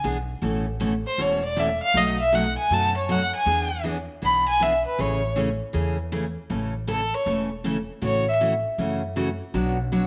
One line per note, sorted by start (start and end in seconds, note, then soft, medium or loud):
0.04 0.36 B1 medium
0.04 0.16 E3 medium
0.04 0.16 B3 medium
0.04 0.16 D4 medium
0.04 0.16 G#4 medium
0.42 1.03 A1 loud
0.42 0.64 B2 medium
0.42 0.65 E3 medium
0.42 0.65 A3 medium
0.42 0.65 C#4 medium
0.42 0.65 A4 medium
0.80 0.92 B2 medium
0.80 0.92 E3 medium
0.80 0.92 A3 medium
0.80 0.92 C#4 medium
0.80 0.92 A4 medium
1.07 1.23 C5 medium
1.18 1.79 E1 medium
1.18 1.41 B2 medium
1.18 1.41 E3 medium
1.18 1.41 A3 medium
1.18 1.41 C#4 medium
1.18 1.41 A4 medium
1.18 1.44 C#5 medium
1.45 1.61 D5 loud
1.56 1.68 B2 medium
1.56 1.68 E3 medium
1.56 1.68 A3 medium
1.56 1.68 C#4 medium
1.56 1.69 A4 medium
1.56 1.82 E5 medium
1.83 1.99 F5 loud
1.94 2.55 B1 loud
1.94 2.17 B2 medium
1.94 2.17 F#3 medium
1.94 2.17 A3 medium
1.94 2.17 D#4 medium
1.94 2.17 F#4 medium
1.94 2.19 D#5 loud
2.20 2.36 E5 loud
2.32 2.44 B2 medium
2.32 2.44 F#3 medium
2.32 2.44 A3 medium
2.32 2.45 D#4 medium
2.32 2.45 F#4 medium
2.32 2.57 F#5 medium
2.58 2.75 G#5 loud
2.70 3.31 F#2 medium
2.70 2.93 B2 medium
2.70 2.93 F#3 medium
2.70 2.93 A3 medium
2.70 2.93 D#4 medium
2.70 2.93 F#4 medium
2.70 2.96 A5 loud
2.97 3.14 C#5 medium
3.09 3.20 B2 medium
3.09 3.20 F#3 medium
3.09 3.20 A3 medium
3.09 3.21 D#4 medium
3.09 3.21 F#4 medium
3.09 3.34 F#5 loud
3.35 3.82 G#5 loud
3.46 4.07 E2 loud
3.46 3.69 E3 medium
3.46 3.69 B3 medium
3.46 3.69 D4 medium
3.46 3.69 G#4 medium
3.84 3.96 E3 medium
3.84 3.96 B3 medium
3.84 3.96 D4 medium
3.84 3.96 G#4 medium
4.22 4.83 B1 medium
4.22 4.44 E3 medium
4.22 4.45 B3 medium
4.22 4.45 D4 medium
4.22 4.45 G#4 medium
4.22 4.47 B5 loud
4.48 4.64 G#5 loud
4.60 4.72 E3 medium
4.60 4.72 B3 medium
4.60 4.72 D4 medium
4.60 4.73 G#4 medium
4.60 4.86 E5 medium
4.86 5.02 B4 medium
4.98 5.59 A1 loud
4.98 5.21 C#3 medium
4.98 5.21 E3 medium
4.98 5.21 A3 medium
4.98 5.21 C#4 medium
4.98 5.21 G#4 medium
4.98 5.38 C#5 medium
5.36 5.48 C#3 medium
5.36 5.48 E3 medium
5.36 5.48 A3 medium
5.36 5.48 C#4 medium
5.36 5.48 G#4 medium
5.73 6.35 E2 medium
5.73 5.96 C#3 medium
5.73 5.96 E3 medium
5.73 5.96 A3 medium
5.73 5.97 C#4 medium
5.73 5.97 G#4 medium
6.12 6.24 C#3 medium
6.12 6.24 E3 medium
6.12 6.24 A3 medium
6.12 6.24 C#4 medium
6.12 6.24 G#4 medium
6.50 7.11 A1 loud
6.50 6.73 C#3 medium
6.50 6.73 E3 medium
6.50 6.73 A3 medium
6.50 6.73 C#4 medium
6.50 6.73 A4 medium
6.87 7.00 C#3 medium
6.87 7.00 E3 medium
6.87 7.00 A3 medium
6.87 7.00 C#4 medium
6.87 7.00 A4 medium
6.87 7.16 A4 medium
7.15 7.27 C#5 medium
7.26 7.87 E1 medium
7.26 7.49 C#3 medium
7.26 7.49 E3 medium
7.26 7.49 A3 medium
7.26 7.49 C#4 medium
7.26 7.49 A4 medium
7.64 7.76 C#3 medium
7.64 7.76 E3 medium
7.64 7.76 A3 medium
7.64 7.76 C#4 medium
7.64 7.76 A4 medium
8.02 8.63 A1 loud
8.02 8.24 C#3 medium
8.02 8.25 E3 medium
8.02 8.25 A3 medium
8.02 8.25 C#4 medium
8.02 8.25 F#4 medium
8.02 8.27 C#5 medium
8.29 8.36 E5 loud
8.41 8.52 C#3 medium
8.41 8.53 E3 medium
8.41 8.52 A3 medium
8.41 8.53 C#4 medium
8.41 8.53 F#4 medium
8.78 9.39 F#2 medium
8.78 9.01 C#3 medium
8.78 9.01 E3 medium
8.78 9.01 A3 medium
8.78 9.01 C#4 medium
8.78 9.01 F#4 medium
9.16 9.28 C#3 medium
9.16 9.28 E3 medium
9.16 9.28 A3 medium
9.16 9.28 C#4 medium
9.16 9.28 F#4 medium
9.54 10.07 B1 loud
9.54 9.77 B2 medium
9.54 9.77 F#3 medium
9.54 9.77 B3 medium
9.54 9.77 D4 medium
9.54 9.77 F#4 medium
9.54 9.77 C#5 medium
9.92 10.04 B2 medium
9.92 10.04 F#3 medium
9.92 10.04 B3 medium
9.92 10.04 D4 medium
9.92 10.04 F#4 medium
9.92 10.04 C#5 medium